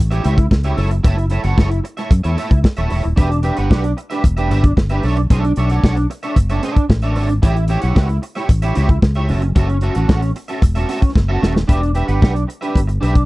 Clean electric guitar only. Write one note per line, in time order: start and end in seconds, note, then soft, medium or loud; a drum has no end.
0.11 0.22 E4 medium
0.11 0.23 G4 medium
0.11 0.24 C#5 medium
0.11 0.24 E5 medium
0.24 0.45 E4 medium
0.24 0.38 G4 medium
0.24 0.37 C#5 medium
0.24 0.37 E5 loud
0.38 muted clean electric guitar stroke soft
0.51 muted clean electric guitar stroke soft
0.64 0.76 E4 medium
0.64 0.77 G4 medium
0.64 0.77 C#5 medium
0.64 0.78 E5 medium
0.77 0.93 E4 medium
0.77 0.91 A4 medium
0.77 0.90 C#5 medium
0.77 0.89 E5 medium
0.91 muted clean electric guitar stroke medium
1.03 1.25 E4 loud
1.03 1.17 A4 loud
1.03 1.17 C#5 loud
1.03 1.16 E5 loud
1.17 muted clean electric guitar stroke soft
1.30 1.44 E4 medium
1.30 1.44 A4 medium
1.30 1.43 C#5 medium
1.30 1.43 E5 medium
1.44 1.56 E4 soft
1.44 1.57 A4 soft
1.44 1.57 C#5 medium
1.44 1.58 F#5 medium
1.57 1.78 E4 medium
1.57 1.70 A4 medium
1.57 1.70 C#5 loud
1.57 1.70 F#5 loud
1.70 muted clean electric guitar stroke soft
1.84 muted clean electric guitar stroke soft
1.97 2.10 E4 soft
1.97 2.10 A4 soft
1.97 2.10 C#5 medium
1.97 2.11 E5 medium
2.11 muted clean electric guitar stroke medium
2.23 2.36 E4 medium
2.23 2.36 A4 medium
2.23 2.37 C#5 medium
2.23 2.38 E5 medium
2.37 2.58 E4 medium
2.37 2.51 A4 medium
2.37 2.50 C#5 medium
2.37 2.50 E5 loud
2.51 muted clean electric guitar stroke medium
2.64 muted clean electric guitar stroke soft
2.77 2.89 E4 medium
2.77 2.90 A4 medium
2.77 2.90 C#5 medium
2.77 2.91 E5 medium
2.90 3.07 E4 medium
2.90 3.04 A4 medium
2.90 3.03 C#5 medium
2.90 3.02 E5 medium
3.04 muted clean electric guitar stroke medium
3.16 3.37 D4 medium
3.16 3.30 G4 medium
3.16 3.29 B4 loud
3.16 3.29 E5 loud
3.30 muted clean electric guitar stroke soft
3.43 3.58 D4 medium
3.43 3.57 G4 medium
3.43 3.56 B4 medium
3.43 3.57 E5 medium
3.57 3.69 D4 medium
3.57 3.69 G4 medium
3.57 3.70 B4 medium
3.57 3.70 F#5 medium
3.70 3.91 D4 medium
3.70 3.84 G4 medium
3.70 3.83 B4 medium
3.70 3.83 F#5 medium
3.84 muted clean electric guitar stroke soft
3.97 muted clean electric guitar stroke medium
4.10 4.22 D4 medium
4.10 4.23 G4 soft
4.10 4.23 B4 medium
4.10 4.23 E5 medium
4.24 muted clean electric guitar stroke soft
4.37 4.49 D4 medium
4.37 4.49 G4 medium
4.37 4.50 B4 medium
4.37 4.50 E5 medium
4.50 4.71 D4 medium
4.50 4.64 G4 medium
4.50 4.63 B4 medium
4.50 4.62 E5 medium
4.64 muted clean electric guitar stroke soft
4.77 muted clean electric guitar stroke soft
4.90 5.02 D4 medium
4.90 5.04 G4 medium
4.90 5.04 B4 medium
4.90 5.04 E5 medium
5.04 5.20 D4 medium
5.04 5.18 A4 medium
5.04 5.17 C#5 medium
5.04 5.16 E5 loud
5.17 muted clean electric guitar stroke medium
5.30 5.51 D4 loud
5.30 5.45 A4 loud
5.30 5.44 C#5 medium
5.30 5.43 E5 loud
5.44 muted clean electric guitar stroke medium
5.57 5.71 D4 medium
5.57 5.70 A4 medium
5.57 5.70 C#5 medium
5.57 5.70 E5 medium
5.71 5.82 D4 soft
5.71 5.83 A4 medium
5.71 5.83 C#5 medium
5.71 5.84 F#5 medium
5.84 6.04 D4 medium
5.84 5.97 A4 medium
5.84 5.96 C#5 medium
5.84 5.96 F#5 medium
5.97 muted clean electric guitar stroke medium
6.10 muted clean electric guitar stroke soft
6.23 6.35 D4 medium
6.23 6.35 A4 medium
6.23 6.36 C#5 medium
6.23 6.36 E5 medium
6.36 muted clean electric guitar stroke medium
6.50 6.62 D4 medium
6.50 6.62 A4 medium
6.50 6.63 C#5 medium
6.50 6.63 E5 medium
6.63 6.84 D4 medium
6.63 6.76 A4 medium
6.63 6.75 C#5 medium
6.63 6.75 E5 medium
6.76 muted clean electric guitar stroke medium
6.89 muted clean electric guitar stroke soft
7.03 7.14 D4 medium
7.03 7.15 A4 medium
7.03 7.15 C#5 medium
7.03 7.16 E5 medium
7.16 7.32 D4 medium
7.16 7.29 A4 medium
7.16 7.28 C#5 medium
7.16 7.27 E5 medium
7.29 muted clean electric guitar stroke soft
7.42 7.63 E4 loud
7.42 7.56 G4 loud
7.42 7.55 C#5 loud
7.42 7.55 E5 loud
7.56 muted clean electric guitar stroke soft
7.69 7.83 E4 medium
7.69 7.82 G4 medium
7.69 7.81 C#5 medium
7.69 7.81 E5 medium
7.82 7.94 E4 soft
7.82 7.95 G4 soft
7.82 7.95 C#5 medium
7.82 7.95 F#5 medium
7.95 8.16 E4 medium
7.95 8.09 G4 medium
7.95 8.09 C#5 medium
7.95 8.08 F#5 medium
8.09 muted clean electric guitar stroke soft
8.22 muted clean electric guitar stroke soft
8.35 8.48 E4 soft
8.35 8.48 G4 medium
8.35 8.49 C#5 medium
8.35 8.49 E5 medium
8.49 muted clean electric guitar stroke soft
8.62 8.74 E4 medium
8.62 8.75 G4 medium
8.62 8.76 C#5 medium
8.62 8.76 E5 medium
8.75 8.97 E4 medium
8.75 8.89 G4 loud
8.75 8.89 C#5 medium
8.75 8.88 E5 loud
8.89 muted clean electric guitar stroke soft
9.03 muted clean electric guitar stroke soft
9.15 9.29 E4 medium
9.15 9.29 G4 medium
9.15 9.30 C#5 medium
9.15 9.30 E5 medium
9.29 9.46 C#4 medium
9.29 9.42 F#4 medium
9.29 9.42 A4 medium
9.29 9.41 E5 medium
9.42 muted clean electric guitar stroke medium
9.55 9.76 C#4 loud
9.55 9.69 F#4 loud
9.55 9.68 A4 loud
9.55 9.68 E5 loud
9.69 muted clean electric guitar stroke medium
9.82 9.96 C#4 medium
9.82 9.95 F#4 medium
9.82 9.95 A4 medium
9.82 9.95 E5 medium
9.95 10.07 C#4 soft
9.95 10.07 F#4 medium
9.95 10.08 A4 medium
9.95 10.09 F#5 medium
10.08 10.29 C#4 medium
10.08 10.22 F#4 medium
10.08 10.22 A4 loud
10.08 10.22 F#5 medium
10.22 muted clean electric guitar stroke soft
10.36 muted clean electric guitar stroke soft
10.48 10.61 C#4 soft
10.48 10.62 F#4 medium
10.48 10.62 A4 medium
10.48 10.62 E5 medium
10.63 muted clean electric guitar stroke soft
10.75 10.88 C#4 medium
10.75 10.88 F#4 medium
10.75 10.89 A4 medium
10.75 10.89 E5 medium
10.89 11.10 C#4 medium
10.89 11.02 F#4 medium
10.89 11.01 A4 medium
10.89 11.00 E5 loud
11.01 muted clean electric guitar stroke soft
11.16 muted clean electric guitar stroke soft
11.28 11.40 C#4 medium
11.28 11.41 F#4 medium
11.28 11.41 A4 medium
11.28 11.42 E5 medium
11.41 11.58 C#4 medium
11.41 11.54 F#4 medium
11.41 11.54 A4 medium
11.41 11.53 E5 medium
11.54 muted clean electric guitar stroke medium
11.68 11.89 D4 medium
11.68 11.81 G4 medium
11.68 11.81 B4 medium
11.68 11.80 E5 medium
11.81 muted clean electric guitar stroke soft
11.94 12.08 D4 soft
11.94 12.07 G4 medium
11.94 12.07 B4 medium
11.94 12.07 E5 medium
12.08 12.20 D4 soft
12.08 12.21 G4 medium
12.08 12.21 B4 medium
12.08 12.21 F#5 medium
12.21 12.42 D4 medium
12.21 12.35 G4 medium
12.21 12.34 B4 medium
12.21 12.34 F#5 medium
12.35 muted clean electric guitar stroke soft
12.47 muted clean electric guitar stroke soft
12.61 12.79 D4 medium
12.61 12.78 G4 medium
12.61 12.78 B4 medium
12.61 12.78 E5 medium
12.87 muted clean electric guitar stroke soft
13.01 13.22 D4 medium
13.01 13.14 G4 medium
13.01 13.14 B4 medium
13.01 13.13 E5 medium
13.14 muted clean electric guitar stroke soft